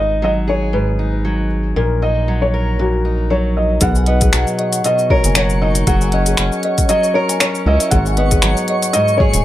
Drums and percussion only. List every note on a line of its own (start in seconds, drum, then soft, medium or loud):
3.81 kick loud
3.81 closed hi-hat medium
3.81 shaker medium
3.95 shaker soft
4.06 closed hi-hat soft
4.21 kick loud
4.21 closed hi-hat soft
4.21 shaker medium
4.33 finger snap loud
4.33 closed hi-hat medium
4.33 shaker medium
4.47 shaker soft
4.59 closed hi-hat soft
4.73 closed hi-hat soft
4.73 shaker medium
4.84 closed hi-hat soft
4.84 shaker soft
4.99 shaker soft
5.10 kick loud
5.24 closed hi-hat soft
5.24 shaker medium
5.35 finger snap loud
5.35 closed hi-hat medium
5.35 shaker medium
5.50 shaker soft
5.75 closed hi-hat soft
5.75 shaker medium
5.87 kick loud
5.87 closed hi-hat medium
5.87 shaker medium
6.01 shaker soft
6.12 closed hi-hat soft
6.26 closed hi-hat soft
6.26 shaker medium
6.37 finger snap loud
6.37 closed hi-hat medium
6.37 shaker medium
6.52 shaker soft
6.63 closed hi-hat soft
6.78 kick loud
6.78 closed hi-hat soft
6.78 shaker medium
6.89 closed hi-hat soft
6.89 shaker medium
7.04 shaker soft
7.29 closed hi-hat soft
7.29 shaker medium
7.40 finger snap loud
7.40 closed hi-hat medium
7.40 shaker medium
7.55 shaker soft
7.80 closed hi-hat soft
7.80 shaker medium
7.91 kick loud
7.91 closed hi-hat medium
7.91 shaker medium
8.06 shaker soft
8.17 closed hi-hat soft
8.31 kick loud
8.31 closed hi-hat soft
8.31 shaker medium
8.42 finger snap loud
8.42 closed hi-hat medium
8.42 shaker medium
8.57 shaker soft
8.68 closed hi-hat soft
8.83 closed hi-hat soft
8.83 shaker medium
8.94 closed hi-hat soft
8.94 shaker soft
9.08 shaker soft
9.20 kick loud
9.34 closed hi-hat soft
9.34 shaker medium